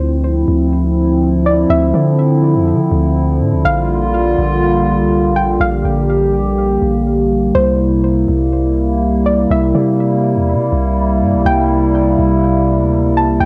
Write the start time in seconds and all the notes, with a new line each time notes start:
Already playing: D2 D3 F3 C4 E4 C5
0.48 D2
1.46 D5
1.70 D2 E5
1.94 D3
2.55 F2
2.73 D3
2.92 D2
3.40 A2
3.53 D2
3.65 A#1 G3 A#3 F4 F5
4.38 A#1
4.99 C2
5.30 A#1
5.36 G5
5.60 A#1 G4 F5
5.84 A#1
6.82 A#1
7.55 C2 C3 E4 C5
8.28 C2
9.26 D5
9.50 C2 E5
9.75 C3
10.36 E2
10.54 C3
10.72 C2
11.21 G2
11.33 C2
11.45 C2 G5
12.19 C2
12.80 D2
13.10 C2
13.17 A5
13.40 C2 G5